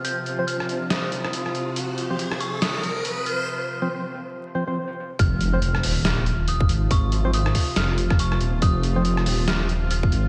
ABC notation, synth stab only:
X:1
M:4/4
L:1/16
Q:"Swing 16ths" 1/4=140
K:Fm
V:1 name="Synth stab"
z3 [F,Cc] z12 | z3 [F,Cc] z12 | z3 [F,Cc] z6 [F,Cc] [F,Cc] z4 | z3 [F,Cc] z12 |
z3 [F,Cc] z12 | z3 [F,Cc] z12 |]